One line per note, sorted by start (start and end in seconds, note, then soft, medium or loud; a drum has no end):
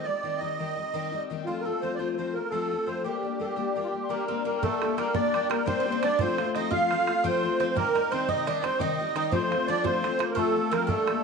0.04 0.23 C4 soft
0.04 0.23 D#4 soft
0.04 0.40 D5 medium
0.08 0.22 G3 soft
0.23 0.40 D#3 medium
0.23 0.40 G3 medium
0.23 0.40 C4 medium
0.23 0.39 D#4 medium
0.37 0.60 D#4 medium
0.37 1.24 D#5 medium
0.41 0.58 D#3 medium
0.41 0.59 G3 soft
0.41 0.60 C4 medium
0.59 0.76 D#3 medium
0.59 0.77 G3 medium
0.59 0.76 C4 medium
0.59 0.75 D#4 medium
0.76 0.93 G3 soft
0.76 0.94 C4 soft
0.76 0.93 D#4 soft
0.93 1.13 D#3 medium
0.93 1.13 G3 medium
0.93 1.12 C4 medium
0.93 1.11 D#4 medium
1.12 1.30 G3 soft
1.12 1.30 C4 soft
1.12 1.29 D#4 medium
1.30 1.46 D#3 medium
1.30 1.47 G3 medium
1.30 1.46 C4 medium
1.30 1.48 D#4 medium
1.45 1.66 F3 medium
1.45 1.65 A3 medium
1.45 1.66 C4 medium
1.45 1.60 F4 medium
1.45 1.64 F4 medium
1.61 1.82 A4 medium
1.61 1.65 A#4 soft
1.65 1.82 A3 soft
1.65 1.82 C4 soft
1.65 1.82 F4 medium
1.81 1.99 F3 medium
1.81 1.98 A3 medium
1.81 1.99 C4 medium
1.81 1.98 F4 medium
1.81 1.95 C5 medium
1.95 2.15 C5 medium
1.95 1.99 D5 medium
1.99 2.17 F3 soft
1.99 2.18 A3 medium
1.99 2.18 C4 soft
1.99 2.18 F4 medium
2.17 2.35 F3 medium
2.17 2.35 A3 medium
2.17 2.35 C4 medium
2.17 2.34 F4 medium
2.17 2.35 C5 medium
2.34 2.51 A3 soft
2.34 2.51 C4 soft
2.34 2.52 F4 soft
2.34 2.52 A#4 medium
2.50 2.71 F3 medium
2.50 2.71 A3 medium
2.50 2.71 C4 medium
2.50 2.70 F4 medium
2.50 2.88 A4 medium
2.71 2.88 A3 soft
2.71 2.87 C4 soft
2.71 2.88 F4 soft
2.86 3.04 F3 medium
2.86 3.05 A3 medium
2.86 3.05 C4 medium
2.86 3.05 F4 medium
2.86 3.04 C5 medium
3.03 3.24 G3 medium
3.03 3.23 A#3 medium
3.03 3.23 D4 medium
3.03 3.39 G4 medium
3.03 3.21 G4 medium
3.23 3.39 A#3 soft
3.23 3.40 D4 soft
3.23 3.40 G4 soft
3.39 3.57 G3 medium
3.39 3.56 A#3 medium
3.39 3.56 D4 soft
3.39 3.55 G4 medium
3.39 3.45 A4 medium
3.44 3.80 G4 medium
3.56 3.74 G3 soft
3.56 3.75 A#3 soft
3.56 3.75 D4 medium
3.56 3.76 G4 medium
3.75 3.93 G3 medium
3.75 3.93 A#3 medium
3.75 3.92 D4 medium
3.75 3.91 G4 medium
3.83 3.87 F4 soft
3.83 4.25 G4 medium
3.92 4.09 A#3 soft
3.92 4.09 D4 soft
3.92 4.09 G4 soft
4.03 4.12 C6 soft
4.09 4.29 G3 medium
4.09 4.29 A#3 medium
4.09 4.28 A#3 medium
4.09 4.28 D4 medium
4.09 4.27 G4 medium
4.09 4.43 A#4 medium
4.09 4.46 A#5 medium
4.28 4.44 A#3 soft
4.28 4.44 C4 medium
4.28 4.44 D4 soft
4.28 4.45 G4 medium
4.44 4.61 G3 medium
4.44 4.61 A#3 medium
4.44 4.62 D4 medium
4.44 4.63 G4 medium
4.44 4.54 A#4 medium
4.44 4.65 A#5 medium
4.56 4.62 A#4 soft
4.62 4.82 G3 medium
4.62 4.96 A3 medium
4.62 4.82 A#3 medium
4.62 4.81 D4 medium
4.62 4.80 G4 medium
4.62 4.99 A4 medium
4.62 4.98 A5 medium
4.62 bodhran medium
4.82 4.97 A#3 soft
4.82 4.97 D4 soft
4.82 4.98 G4 medium
4.82 bodhran medium
4.97 5.14 G3 medium
4.97 5.14 A#3 medium
4.97 5.14 D4 medium
4.97 5.13 G4 medium
4.97 5.15 A#4 medium
4.97 5.18 A#5 medium
4.97 bodhran soft
5.14 5.33 G3 medium
5.14 5.34 A#3 medium
5.14 5.48 D4 medium
5.14 5.34 D4 medium
5.14 5.34 G4 medium
5.14 5.48 D5 medium
5.14 5.52 D6 medium
5.14 bodhran loud
5.34 5.51 G3 medium
5.34 5.51 A#3 medium
5.34 5.50 D4 medium
5.34 5.48 G4 medium
5.34 bodhran medium
5.49 5.67 A#3 medium
5.49 5.65 A#3 soft
5.49 5.66 D4 soft
5.49 5.66 G4 soft
5.49 5.67 A#4 medium
5.49 5.68 A#5 medium
5.49 bodhran medium
5.66 5.86 G3 medium
5.66 5.86 A#3 medium
5.66 5.79 C4 medium
5.66 5.86 D4 medium
5.66 5.85 G4 medium
5.66 6.04 C5 loud
5.66 6.04 C6 medium
5.66 bodhran medium
5.80 5.91 C4 medium
5.86 6.03 A#3 medium
5.86 6.03 D4 medium
5.86 6.03 G4 medium
5.92 6.03 C4 medium
6.03 6.20 G3 medium
6.03 6.20 A#3 medium
6.03 6.18 D4 medium
6.03 6.20 D4 medium
6.03 6.21 G4 medium
6.03 6.20 D5 loud
6.03 6.19 D6 medium
6.03 bodhran medium
6.19 6.39 F3 medium
6.19 6.38 A3 medium
6.19 6.52 C4 medium
6.19 6.39 C4 medium
6.19 6.37 F4 medium
6.19 6.53 C5 loud
6.19 6.24 D6 medium
6.19 bodhran loud
6.23 6.56 C6 medium
6.38 6.56 A3 medium
6.38 6.55 C4 soft
6.38 6.55 F4 medium
6.38 bodhran medium
6.55 6.72 F3 medium
6.55 6.71 A3 medium
6.55 6.71 C4 medium
6.55 6.70 D#4 medium
6.55 6.70 F4 medium
6.55 6.73 D#5 medium
6.55 6.72 D#6 medium
6.55 bodhran medium
6.71 6.90 F3 medium
6.71 6.91 A3 medium
6.71 6.91 C4 medium
6.71 7.20 F4 medium
6.71 6.91 F4 medium
6.71 7.26 F5 loud
6.71 7.25 F6 medium
6.71 bodhran medium
6.91 7.08 F3 medium
6.91 7.08 A3 medium
6.91 7.08 C4 medium
6.91 7.06 F4 medium
6.91 bodhran medium
7.07 7.24 A3 soft
7.07 7.23 C4 soft
7.07 7.24 F4 soft
7.07 bodhran medium
7.24 7.43 F3 medium
7.24 7.43 A3 loud
7.24 7.57 C4 medium
7.24 7.43 C4 medium
7.24 7.42 F4 loud
7.24 7.59 C5 loud
7.24 7.59 C6 medium
7.24 bodhran medium
7.43 7.60 A3 medium
7.43 7.60 C4 soft
7.43 7.59 F4 medium
7.60 7.76 F3 medium
7.60 7.76 A3 medium
7.60 7.76 C4 medium
7.60 7.77 F4 medium
7.60 7.68 C5 loud
7.60 7.78 C6 medium
7.60 bodhran medium
7.70 7.76 C5 medium
7.75 7.95 C3 medium
7.75 7.95 D#3 medium
7.75 7.95 G3 medium
7.75 7.94 A#3 medium
7.75 7.94 C4 medium
7.75 7.93 D#4 medium
7.75 8.13 A#4 loud
7.75 7.94 A#5 medium
7.75 bodhran medium
7.94 8.10 G3 soft
7.94 8.11 A#3 medium
7.94 8.11 C4 medium
7.94 8.11 D#4 medium
7.94 8.13 A#5 loud
7.94 bodhran medium
8.11 8.28 D#3 medium
8.11 8.28 G3 medium
8.11 8.27 C4 medium
8.11 8.27 D#4 medium
8.11 8.28 C5 loud
8.11 8.30 C6 medium
8.11 bodhran soft
8.28 8.48 C3 medium
8.28 8.45 D#3 medium
8.28 8.46 G3 medium
8.28 8.47 C4 medium
8.28 8.47 D#4 medium
8.28 8.46 D#4 medium
8.28 8.57 D#5 medium
8.28 8.66 D#6 medium
8.28 bodhran medium
8.46 8.63 D#3 medium
8.46 8.64 G3 medium
8.46 8.63 C4 medium
8.46 8.63 D4 medium
8.46 8.62 D#4 medium
8.46 bodhran medium
8.60 8.79 C4 medium
8.60 8.80 D#4 medium
8.60 8.64 D5 medium
8.64 8.79 G3 soft
8.64 8.79 C4 soft
8.64 8.79 C5 loud
8.64 8.83 C6 medium
8.64 bodhran medium
8.79 8.99 C3 medium
8.79 8.99 D#3 medium
8.79 8.99 G3 medium
8.79 8.99 C4 medium
8.79 8.98 D#4 medium
8.79 9.14 D#4 medium
8.79 9.16 D#5 medium
8.79 9.15 D#6 medium
8.79 bodhran medium
8.99 9.14 G3 soft
8.99 9.15 C4 medium
8.99 9.16 D#4 medium
9.15 9.31 D#3 medium
9.15 9.31 G3 medium
9.15 9.31 C4 medium
9.15 9.31 D#4 medium
9.15 9.33 D#4 medium
9.15 9.33 D#5 loud
9.15 9.31 D#6 medium
9.15 bodhran medium
9.31 9.51 F3 medium
9.31 9.51 A3 medium
9.31 9.51 C4 medium
9.31 9.65 C4 medium
9.31 9.49 F4 medium
9.31 9.69 C5 loud
9.31 9.37 D6 medium
9.31 bodhran medium
9.36 9.70 C6 medium
9.51 9.68 A3 medium
9.51 9.67 C4 soft
9.51 9.67 F4 medium
9.51 bodhran medium
9.67 9.84 F3 medium
9.67 9.83 A3 medium
9.67 9.83 C4 medium
9.67 9.85 D4 medium
9.67 9.82 F4 medium
9.67 9.83 D5 loud
9.67 9.86 D6 medium
9.83 10.01 F3 medium
9.83 10.03 A3 medium
9.83 10.02 C4 medium
9.83 10.17 C4 medium
9.83 10.03 F4 medium
9.83 10.31 C5 loud
9.83 10.13 C6 medium
9.83 bodhran loud
10.02 10.19 F3 medium
10.02 10.19 A3 medium
10.02 10.20 C4 medium
10.02 10.18 F4 medium
10.02 bodhran medium
10.19 10.37 A3 soft
10.19 10.35 A#3 medium
10.19 10.36 C4 soft
10.19 10.36 F4 soft
10.19 bodhran medium
10.31 10.37 A#4 medium
10.35 10.55 F3 medium
10.35 10.68 A3 medium
10.35 10.55 A3 medium
10.35 10.56 C4 medium
10.35 10.54 F4 medium
10.35 10.73 A4 medium
10.35 10.41 C6 medium
10.35 bodhran medium
10.40 10.69 A5 medium
10.55 10.72 A3 medium
10.55 10.71 C4 soft
10.55 10.71 F4 medium
10.71 10.88 F3 medium
10.71 10.89 A3 medium
10.71 10.87 A#3 medium
10.71 10.88 C4 medium
10.71 10.89 F4 medium
10.71 10.89 A#4 loud
10.71 bodhran medium
10.83 10.91 G5 medium
10.87 11.07 G3 medium
10.87 11.24 A3 medium
10.87 11.07 A#3 medium
10.87 11.07 D4 medium
10.87 11.05 G4 medium
10.87 11.24 A4 medium
10.87 11.23 A5 medium
10.87 bodhran medium
11.07 11.23 A#3 medium
11.07 11.24 D4 medium
11.07 11.23 G4 medium
11.07 bodhran medium